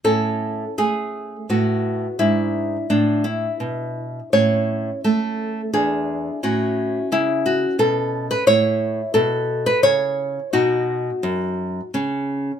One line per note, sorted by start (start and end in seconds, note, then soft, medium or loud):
0.04 0.63 A2 soft
0.04 1.46 C#4 soft
0.04 0.75 A4 medium
0.78 1.35 A3 soft
0.78 1.47 G#4 medium
1.50 2.06 A2 soft
1.50 2.16 B3 soft
1.50 2.17 F#4 medium
2.19 2.76 G#2 soft
2.19 2.89 D4 soft
2.19 2.87 E4 medium
2.90 3.46 A2 medium
2.90 3.23 D4 medium
3.24 4.29 E4 medium
3.60 4.19 B2 soft
4.33 4.89 A2 medium
4.33 5.69 C#4 soft
4.33 5.00 C#5 medium
5.04 5.60 A3 soft
5.04 5.71 A4 medium
5.73 6.29 E2 medium
5.73 6.39 D4 soft
5.73 6.40 G#4 medium
6.43 6.98 A2 medium
6.43 8.42 C#4 soft
6.43 7.09 F#4 medium
7.12 7.65 C#3 medium
7.12 7.44 E4 medium
7.46 7.78 F#4 medium
7.79 8.32 B2 medium
7.79 8.27 A4 medium
8.31 8.46 B4 medium
8.47 9.00 A2 medium
8.47 10.49 E4 soft
8.47 9.11 C#5 medium
9.14 9.70 B2 medium
9.14 9.63 A4 medium
9.66 9.83 B4 medium
9.83 10.39 C#3 medium
9.83 10.50 C#5 medium
10.53 11.09 B2 medium
10.53 11.90 D#4 soft
10.53 11.90 F#4 medium
11.23 11.80 F#2 medium
11.94 12.51 C#3 medium
11.94 12.60 C#4 soft